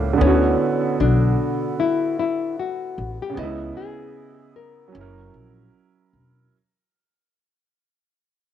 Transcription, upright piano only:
0, 0, Header, 1, 2, 480
1, 0, Start_track
1, 0, Tempo, 789474
1, 125, Time_signature, 4, 2, 24, 8
1, 5190, End_track
2, 0, Start_track
2, 0, Title_t, "Upright piano"
2, 0, Program_c, 0, 0
2, 0, Control_c, 0, 64, 127
2, 0, Note_on_c, 0, 45, 65
2, 0, Note_on_c, 0, 55, 57
2, 0, Note_on_c, 0, 58, 74
2, 0, Note_on_c, 0, 61, 62
2, 82, Note_on_c, 0, 50, 70
2, 87, Note_off_c, 0, 45, 0
2, 100, Note_off_c, 0, 55, 0
2, 108, Note_on_c, 0, 59, 66
2, 114, Note_off_c, 0, 61, 0
2, 127, Note_off_c, 0, 58, 0
2, 131, Control_c, 0, 64, 0
2, 135, Note_on_c, 0, 64, 64
2, 162, Note_on_c, 0, 66, 78
2, 238, Control_c, 0, 64, 127
2, 1999, Note_off_c, 0, 50, 0
2, 2003, Note_on_c, 0, 49, 77
2, 2012, Note_off_c, 0, 59, 0
2, 2026, Note_off_c, 0, 64, 0
2, 2030, Note_on_c, 0, 59, 65
2, 2039, Note_off_c, 0, 66, 0
2, 2051, Control_c, 0, 64, 0
2, 2059, Note_on_c, 0, 75, 66
2, 2085, Note_on_c, 0, 64, 79
2, 2143, Control_c, 0, 64, 127
2, 2964, Note_off_c, 0, 49, 0
2, 2965, Note_on_c, 0, 54, 65
2, 2978, Note_off_c, 0, 59, 0
2, 2992, Note_on_c, 0, 61, 65
2, 2993, Note_off_c, 0, 75, 0
2, 3006, Note_off_c, 0, 64, 0
2, 3013, Control_c, 0, 64, 0
2, 3018, Note_on_c, 0, 64, 62
2, 3044, Note_on_c, 0, 70, 75
2, 3118, Control_c, 0, 64, 127
2, 3925, Note_off_c, 0, 54, 0
2, 3939, Note_off_c, 0, 61, 0
2, 3952, Note_off_c, 0, 64, 0
2, 3965, Note_off_c, 0, 70, 0
2, 3974, Control_c, 0, 64, 0
2, 5190, End_track
0, 0, End_of_file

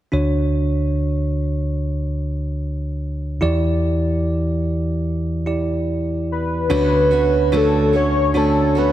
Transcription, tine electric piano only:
0, 0, Header, 1, 2, 480
1, 0, Start_track
1, 0, Key_signature, 2, "major"
1, 0, Tempo, 821918
1, 75, Time_signature, 4, 2, 24, 8
1, 5211, End_track
2, 0, Start_track
2, 0, Title_t, "Tine electric piano"
2, 0, Program_c, 0, 4
2, 69, Note_on_c, 0, 62, 45
2, 72, Note_on_c, 0, 50, 45
2, 73, Note_on_c, 0, 66, 43
2, 74, Note_on_c, 0, 38, 50
2, 79, Note_on_c, 0, 73, 49
2, 174, Control_c, 0, 64, 127
2, 1969, Note_off_c, 0, 62, 0
2, 1970, Note_off_c, 0, 50, 0
2, 1971, Note_off_c, 0, 38, 0
2, 1971, Note_off_c, 0, 66, 0
2, 1973, Note_off_c, 0, 73, 0
2, 1991, Note_on_c, 0, 64, 54
2, 1995, Note_on_c, 0, 40, 49
2, 1995, Note_on_c, 0, 52, 55
2, 1995, Note_on_c, 0, 67, 47
2, 2000, Note_on_c, 0, 74, 58
2, 2004, Control_c, 0, 64, 0
2, 2115, Control_c, 0, 64, 127
2, 3170, Note_off_c, 0, 64, 0
2, 3172, Note_off_c, 0, 67, 0
2, 3174, Note_off_c, 0, 74, 0
2, 3191, Note_on_c, 0, 64, 36
2, 3193, Note_on_c, 0, 67, 35
2, 3196, Note_on_c, 0, 74, 37
2, 3892, Note_off_c, 0, 40, 0
2, 3892, Note_off_c, 0, 52, 0
2, 3911, Note_on_c, 0, 62, 62
2, 3913, Note_off_c, 0, 64, 0
2, 3914, Note_off_c, 0, 67, 0
2, 3914, Note_on_c, 0, 38, 50
2, 3914, Note_on_c, 0, 50, 49
2, 3914, Note_on_c, 0, 66, 51
2, 3916, Note_off_c, 0, 74, 0
2, 3917, Note_on_c, 0, 73, 62
2, 3922, Control_c, 0, 64, 0
2, 4038, Control_c, 0, 64, 127
2, 4369, Note_off_c, 0, 62, 0
2, 4370, Note_off_c, 0, 66, 0
2, 4372, Note_off_c, 0, 73, 0
2, 4392, Note_on_c, 0, 62, 53
2, 4394, Note_on_c, 0, 66, 50
2, 4397, Note_on_c, 0, 73, 62
2, 4849, Note_off_c, 0, 62, 0
2, 4851, Note_off_c, 0, 66, 0
2, 4852, Note_off_c, 0, 73, 0
2, 4871, Note_on_c, 0, 62, 53
2, 4873, Note_on_c, 0, 66, 49
2, 4876, Note_on_c, 0, 73, 54
2, 5211, Note_off_c, 0, 38, 0
2, 5211, Note_off_c, 0, 50, 0
2, 5211, Note_off_c, 0, 62, 0
2, 5211, Note_off_c, 0, 66, 0
2, 5211, Note_off_c, 0, 73, 0
2, 5211, End_track
0, 0, End_of_file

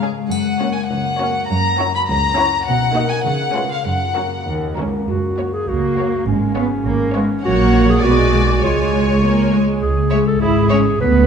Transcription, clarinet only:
0, 0, Header, 1, 2, 480
1, 0, Start_track
1, 0, Key_signature, 6, "major"
1, 0, Tempo, 594059
1, 254, Time_signature, 2, 2, 24, 8
1, 9105, End_track
2, 0, Start_track
2, 0, Title_t, "Clarinet"
2, 0, Program_c, 0, 71
2, 4109, Note_on_c, 0, 66, 54
2, 4470, Note_on_c, 0, 68, 57
2, 4482, Note_off_c, 0, 66, 0
2, 4591, Note_on_c, 0, 66, 59
2, 4603, Note_off_c, 0, 68, 0
2, 5062, Note_off_c, 0, 66, 0
2, 5067, Note_on_c, 0, 61, 59
2, 5997, Note_off_c, 0, 61, 0
2, 6019, Note_on_c, 0, 66, 74
2, 6380, Note_on_c, 0, 68, 72
2, 6392, Note_off_c, 0, 66, 0
2, 6492, Note_off_c, 0, 68, 0
2, 6496, Note_on_c, 0, 66, 73
2, 6962, Note_off_c, 0, 66, 0
2, 6982, Note_on_c, 0, 65, 57
2, 7686, Note_off_c, 0, 65, 0
2, 7931, Note_on_c, 0, 68, 63
2, 8269, Note_off_c, 0, 68, 0
2, 8294, Note_on_c, 0, 69, 56
2, 8411, Note_off_c, 0, 69, 0
2, 8416, Note_on_c, 0, 68, 64
2, 8884, Note_off_c, 0, 68, 0
2, 8892, Note_on_c, 0, 71, 76
2, 9105, Note_off_c, 0, 71, 0
2, 9105, End_track
0, 0, End_of_file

